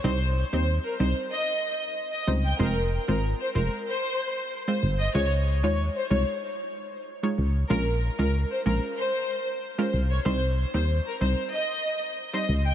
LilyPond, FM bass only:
\new Staff \with { instrumentName = "FM bass" } { \clef bass \time 4/4 \key c \phrygian \tempo 4 = 94 c,8. ees,8 r16 c,16 r4. r16 des,8 | f,,8. aes,,8 r16 f,,16 r4. r16 g,,8 | des,8. ees,8 r16 c,16 r4. r16 des,8 | bes,,8. des,8 r16 bes,,16 r4. r16 c,8 |
c,8. ees,8 r16 c,16 r4. r16 des,8 | }